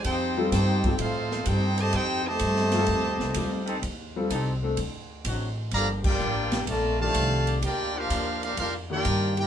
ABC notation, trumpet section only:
X:1
M:4/4
L:1/8
Q:"Swing" 1/4=127
K:F
V:1 name="Trumpet section"
[_EAcg]2 [EAcg]2 [EAcf]2 [EAcg] [Gc_ea] | [_EAcg] [Gc_ea]6 z | z8 | [Gdfb] [FBdg]3 [FBda] [Gdfa]3 |
[FBdg] [DGBf]2 [DGBf] [DGBf] [FBdg]2 [EBdg] |]